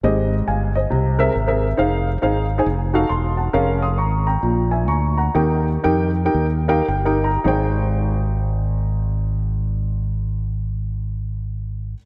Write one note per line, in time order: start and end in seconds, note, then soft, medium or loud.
0.03 0.41 G#1 medium
0.03 0.71 G#2 medium
0.03 0.33 C4 medium
0.03 0.33 G4 medium
0.03 0.33 G#4 medium
0.03 0.33 D#5 medium
0.48 0.85 G1 medium
0.48 0.74 F5 soft
0.48 0.74 G#5 medium
0.75 1.17 C5 soft
0.75 1.17 D#5 medium
0.90 1.28 C2 medium
0.90 1.58 C3 medium
1.19 1.31 C4 medium
1.19 1.31 G#4 medium
1.19 1.31 A#4 medium
1.19 1.32 E5 medium
1.35 1.72 G#1 medium
1.47 1.66 C4 medium
1.47 1.67 G#4 medium
1.47 1.67 A#4 medium
1.47 1.67 E5 medium
1.77 2.16 F1 medium
1.77 2.07 D#4 medium
1.77 2.07 G#4 medium
1.77 2.07 C5 medium
1.77 2.08 F5 medium
2.22 2.60 G#1 medium
2.22 2.45 D#4 medium
2.22 2.45 G#4 medium
2.22 2.45 C5 medium
2.22 2.45 F5 medium
2.58 2.66 D#4 medium
2.58 2.66 G#4 medium
2.58 2.66 C5 medium
2.58 2.66 G#5 medium
2.66 3.03 F1 medium
2.94 3.07 D#4 medium
2.94 3.06 F#4 medium
2.94 3.07 A4 medium
2.94 3.07 F5 medium
3.09 3.47 E1 medium
3.09 3.36 A5 soft
3.09 3.36 C6 medium
3.37 3.79 F#5 soft
3.37 3.79 A5 medium
3.53 3.98 F1 loud
3.53 3.83 C#4 medium
3.53 3.83 G#4 medium
3.53 3.83 A#4 medium
3.53 3.83 F5 medium
3.82 3.97 C6 soft
3.82 3.97 D#6 medium
3.98 4.36 G#1 medium
3.98 4.25 A#5 soft
3.98 4.25 C#6 medium
4.27 4.70 G5 medium
4.27 4.69 A#5 medium
4.42 4.88 A#1 medium
4.42 5.14 A#2 medium
4.71 4.87 E5 soft
4.71 4.87 G#5 medium
4.88 5.28 D2 medium
4.88 5.16 A#5 soft
4.88 5.16 C#6 medium
5.17 5.64 F#5 soft
5.17 5.63 A#5 medium
5.35 5.76 D#2 medium
5.35 6.12 D#3 medium
5.35 5.67 D#4 medium
5.35 5.67 G4 medium
5.35 5.68 A#4 medium
5.35 5.68 G5 medium
5.84 6.28 F2 medium
5.84 6.10 D#4 medium
5.84 6.10 G4 medium
5.84 6.10 A#4 medium
5.84 6.10 G5 medium
6.25 6.45 D#4 medium
6.25 6.45 G4 medium
6.25 6.45 A#4 medium
6.25 6.45 G5 medium
6.34 6.80 D#2 medium
6.68 6.84 D#4 medium
6.68 6.84 G4 medium
6.68 6.84 A#4 medium
6.68 6.87 F5 medium
6.68 6.85 G5 medium
6.88 7.36 G1 medium
6.88 7.05 G5 medium
7.05 7.30 D#4 medium
7.05 7.30 G4 medium
7.05 7.30 A#4 medium
7.05 7.31 G5 medium
7.24 7.44 A#5 medium
7.44 11.94 G#1 medium
7.44 11.95 G#1 medium
7.44 11.93 D#4 medium
7.44 11.94 G#4 medium
7.44 11.95 C5 medium
7.44 11.97 G5 medium